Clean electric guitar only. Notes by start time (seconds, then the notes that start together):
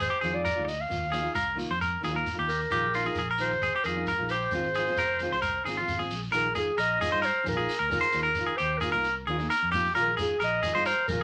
0.10 G4
0.21 G#4
0.45 A#4
0.65 muted clean electric guitar stroke
1.12 G#4
1.35 A#4
1.71 C5
1.81 A#4
2.04 G#4
2.16 A#4
2.39 G4
2.72 G4
2.95 F4
3.06 G#4
3.19 G#4
3.31 A#4
3.63 G#4
3.76 G4
3.86 G#4
4.08 A#4
4.31 G4
4.75 G#4
4.99 A#4
5.32 C5
5.42 A#4
5.65 G#4
5.77 F4
5.99 G#4
6.32 A#4
6.55 G#4
6.78 A#4
7.01 G#4
7.12 C5
7.22 A#4
7.57 G#4
7.79 A#4
8.01 C5
8.23 A#4
8.46 G#4
8.58 G4
8.81 G#4
8.92 A#4
9.27 G#4
9.50 A#4
9.72 G4
9.95 A#4
10.17 G#4
10.40 A#4
10.63 G#4
10.75 C5
10.86 A#4